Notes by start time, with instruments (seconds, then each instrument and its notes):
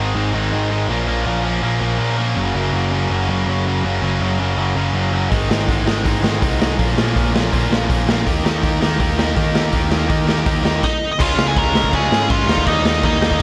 Already playing: picked electric bass G#1, distorted electric guitar G#2 D#3 G#3 C4 D#4
0.15 picked electric bass G#1, distorted electric guitar G#2 D#3 G#3 C4 D#4
0.33 picked electric bass G#1, distorted electric guitar G#2 D#3 G#3 C4 D#4
0.51 picked electric bass G#1, distorted electric guitar G#2 D#3 G#3 C4 D#4
0.70 distorted electric guitar G#2 D#3 G#3 C4 D#4
0.88 picked electric bass A#1, distorted electric guitar A#2 F3 A#3 C#4
1.07 picked electric bass A#1, distorted electric guitar A#2 F3 A#3 C#4
1.26 picked electric bass A#1, distorted electric guitar A#2 F3 A#3 C#4
1.44 distorted electric guitar A#2 F3 A#3 C#4
1.62 picked electric bass A#1, distorted electric guitar A#2 F3 A#3 C#4
1.80 picked electric bass A#1, distorted electric guitar A#2 F3 A#3 C#4
1.98 picked electric bass A#1, distorted electric guitar A#2 F3 A#3 C#4
2.17 distorted electric guitar A#2 F3 A#3 C#4
2.35 picked electric bass F#1, distorted electric guitar F#2 C#3 F#3 A#3 C#4
2.55 picked electric bass F#1, distorted electric guitar F#2 C#3 F#3 A#3 C#4
2.73 picked electric bass F#1, distorted electric guitar F#2 C#3 F#3 A#3 C#4
2.93 distorted electric guitar F#2 C#3 F#3 A#3 C#4
3.10 picked electric bass F#1, distorted electric guitar F#2 C#3 F#3 A#3 C#4
3.29 picked electric bass F#1, distorted electric guitar F#2 C#3 F#3 A#3 C#4
3.47 picked electric bass F#1, distorted electric guitar F#2 C#3 F#3 A#3 C#4
3.66 distorted electric guitar F#2 C#3 F#3 A#3 C#4
3.84 picked electric bass F#1, distorted electric guitar F#2 C#3 F#3 A#3 C#4
4.02 picked electric bass F#1, distorted electric guitar F#2 C#3 F#3 A#3 C#4
4.21 picked electric bass F#1, distorted electric guitar F#2 C#3 F#3 A#3 C#4
4.39 distorted electric guitar F#2 C#3 F#3 A#3 C#4
4.58 picked electric bass F#1, distorted electric guitar F#2 C#3 F#3 A#3 C#4
4.76 picked electric bass F#1, distorted electric guitar F#2 C#3 F#3 A#3 C#4
4.94 picked electric bass F#1, distorted electric guitar F#2 C#3 F#3 A#3 C#4
5.13 distorted electric guitar F#2 C#3 F#3 A#3 C#4
5.30 picked electric bass G#1, distorted electric guitar G#2 D#3 G#3 C4 D#4, kick, open hi-hat
5.49 picked electric bass G#1, distorted electric guitar G#2 D#3 G#3 C4 D#4, snare
5.67 picked electric bass G#1, distorted electric guitar G#2 D#3 G#3 C4 D#4, kick, open hi-hat
5.85 distorted electric guitar G#2 D#3 G#3 C4 D#4, snare
6.04 picked electric bass G#1, distorted electric guitar G#2 D#3 G#3 C4 D#4, kick, open hi-hat
6.23 picked electric bass G#1, distorted electric guitar G#2 D#3 G#3 C4 D#4, snare
6.41 picked electric bass C2, distorted electric guitar G#2 D#3 G#3 C4 D#4, kick, open hi-hat
6.60 distorted electric guitar G#2 D#3 G#3 C4 D#4, snare
6.78 picked electric bass A#1, distorted electric guitar A#2 F3 A#3 C#4 F4, kick, open hi-hat
6.97 picked electric bass A#1, distorted electric guitar A#2 F3 A#3 C#4 F4, snare
7.15 picked electric bass A#1, distorted electric guitar A#2 F3 A#3 C#4 F4, kick, open hi-hat
7.34 distorted electric guitar A#2 F3 A#3 C#4 F4, snare
7.51 picked electric bass A#1, distorted electric guitar A#2 F3 A#3 C#4 F4, kick, open hi-hat
7.70 picked electric bass A#1, distorted electric guitar A#2 F3 A#3 C#4 F4, snare
7.89 picked electric bass A#1, distorted electric guitar A#2 F3 A#3 C#4 F4, kick, open hi-hat
8.08 distorted electric guitar A#2 F3 A#3 C#4 F4, snare
8.26 picked electric bass D#2, distorted electric guitar D#3 A#3 D#4 G4, kick, open hi-hat
8.43 picked electric bass D#2, distorted electric guitar D#3 A#3 D#4 G4, snare
8.63 picked electric bass D#2, distorted electric guitar D#3 A#3 D#4 G4, kick, open hi-hat
8.80 distorted electric guitar D#3 A#3 D#4 G4, snare
8.99 picked electric bass D#2, distorted electric guitar D#3 A#3 D#4 G4, kick, open hi-hat
9.16 picked electric bass D#2, distorted electric guitar D#3 A#3 D#4 G4, snare
9.36 picked electric bass D#2, distorted electric guitar D#3 A#3 D#4 G4, kick, open hi-hat
9.54 distorted electric guitar D#3 A#3 D#4 G4, snare
9.72 picked electric bass D#2, distorted electric guitar D#3 A#3 D#4 G4, kick, open hi-hat
9.91 picked electric bass D#2, distorted electric guitar D#3 A#3 D#4 G4, snare
10.09 picked electric bass D#2, distorted electric guitar D#3 A#3 D#4 G4, kick, open hi-hat
10.27 distorted electric guitar D#3 A#3 D#4 G4, snare
10.45 picked electric bass D#2, distorted electric guitar D#3 A#3 D#4 G4, kick, open hi-hat
10.63 picked electric bass D#2, distorted electric guitar D#3 A#3 D#4 G4, snare
10.83 lead electric guitar D#4 D#5, kick, crash
11.13 lead electric guitar D#5
11.19 picked electric bass C#2, distorted electric guitar C#3 G#3 C#4 F4, lead electric guitar F4 F5, kick, crash
11.37 picked electric bass C#2, distorted electric guitar C#3 G#3 C#4 F4, snare
11.47 lead electric guitar G#4 G#5
11.56 picked electric bass C#2, distorted electric guitar C#3 G#3 C#4 F4, lead electric guitar A#4 A#5, kick, crash
11.73 picked electric bass C#2, distorted electric guitar C#3 G#3 C#4 F4, snare
11.84 kick
11.93 picked electric bass C#2, distorted electric guitar C#3 G#3 C#4 F4, lead electric guitar G#4 G#5, kick, crash
12.10 picked electric bass G#2, distorted electric guitar C#3 G#3 C#4 F4, snare
12.30 picked electric bass G#2, distorted electric guitar C#3 G#3 C#4 F4, lead electric guitar F4 F5, kick, crash
12.47 picked electric bass D#2, distorted electric guitar D#3 G3 A#3 D#4, snare
12.58 kick
12.67 picked electric bass D#2, distorted electric guitar D#3 G3 A#3 D#4, lead electric guitar D#4 D#5, kick, crash
12.84 picked electric bass D#2, distorted electric guitar D#3 G3 A#3 D#4, snare
13.03 picked electric bass D#2, distorted electric guitar D#3 G3 A#3 D#4, lead electric guitar D#4 D#5, kick, crash
13.20 picked electric bass D#2, distorted electric guitar D#3 G3 A#3 D#4, snare
13.31 kick